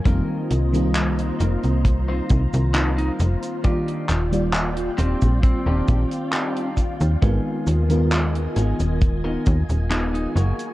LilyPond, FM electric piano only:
\new Staff \with { instrumentName = "FM electric piano" } { \time 4/4 \key aes \lydian \tempo 4 = 67 <ees g bes c' f'>8. <ees g bes c' f'>2.~ <ees g bes c' f'>16 | <ees g bes f' d''>8. <ees g bes f' d''>2.~ <ees g bes f' d''>16 | <ees aes ces' f' bes'>8. <ees aes ces' f' bes'>2~ <ees aes ces' f' bes'>8. r8 | }